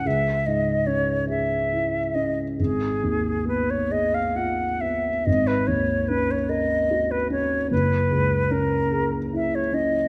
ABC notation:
X:1
M:6/8
L:1/16
Q:3/8=49
K:G#m
V:1 name="Flute"
e2 d2 c2 e4 d2 | G4 B c d ^e f2 =e2 | d B c2 B c d3 B c2 | B4 A4 e c d2 |]
V:2 name="Grand piano"
C,,2 G,,2 C2 G2 E2 C2 | G,,,2 D,,2 B,2 G2 ^E2 B,2 | G,,,2 D,,2 C2 A2 F2 C2 | F,,,2 C,,2 C2 G2 E2 C2 |]